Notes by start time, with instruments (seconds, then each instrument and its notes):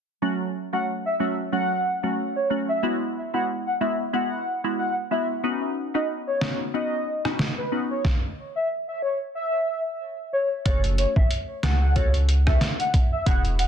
0.22 synth pluck F#3 A3 C#4 F#4
0.73 synth pluck F#3 A3 C#4 F#4, soft synth lead F#5
1.06 soft synth lead E5
1.20 synth pluck F#3 A3 C#4 F#4, soft synth lead E5
1.52 synth pluck F#3 A3 C#4 F#4, soft synth lead F#5
2.03 synth pluck F#3 A3 C#4 F#4
2.36 soft synth lead C#5
2.50 synth pluck F#3 A3 C#4 F#4
2.69 soft synth lead E5
2.83 synth pluck G#3 B3 E4 F#4
3.34 synth pluck G#3 B3 E4 F#4, soft synth lead F#5
3.66 soft synth lead F#5
3.81 synth pluck G#3 B3 E4 F#4, soft synth lead E5
4.13 synth pluck G#3 B3 E4 F#4, soft synth lead F#5
4.64 synth pluck G#3 B3 E4 F#4
4.79 soft synth lead F#5
5.11 synth pluck G#3 B3 E4 F#4, soft synth lead E5
5.44 synth pluck B3 C#4 D#4 F#4
5.94 synth pluck B3 C#4 D#4 F#4, soft synth lead D#5
6.27 soft synth lead C#5
6.41 synth pluck B3 C#4 D#4 F#4, soft synth lead C#5, snare
6.74 synth pluck B3 C#4 D#4 F#4, soft synth lead D#5
7.25 synth pluck B3 C#4 D#4 F#4, cross-stick
7.39 snare
7.58 soft synth lead B4
7.72 synth pluck B3 C#4 D#4 F#4
7.90 soft synth lead C#5
8.05 kick, snare
8.56 soft synth lead E5
8.88 soft synth lead E5
9.02 soft synth lead C#5
9.35 soft synth lead E5
10.33 soft synth lead C#5
10.65 sub bass F#1, synth pluck A3 C#4 F#4 A4, soft synth lead C#5, kick, closed hi-hat
10.84 closed hi-hat
10.98 soft synth lead C#5, closed hi-hat
11.16 sub bass A1, soft synth lead E5, kick
11.31 closed hi-hat
11.63 sub bass C#2, synth pluck A3 C#4 F#4 A4, soft synth lead F#5, snare, closed hi-hat
11.82 soft synth lead F#5
11.96 synth pluck A3 C#4 F#4 A4, soft synth lead C#5, kick, closed hi-hat
12.14 closed hi-hat
12.29 closed hi-hat
12.46 synth pluck A3 C#4 F#4 A4, soft synth lead E5, kick, cross-stick
12.61 snare, closed hi-hat
12.80 soft synth lead F#5, closed hi-hat
12.94 kick, closed hi-hat
13.12 soft synth lead E5
13.26 sub bass E1, synth pluck B3 E4 F#4 G#4, soft synth lead F#5, kick, closed hi-hat
13.45 closed hi-hat
13.59 soft synth lead F#5, closed hi-hat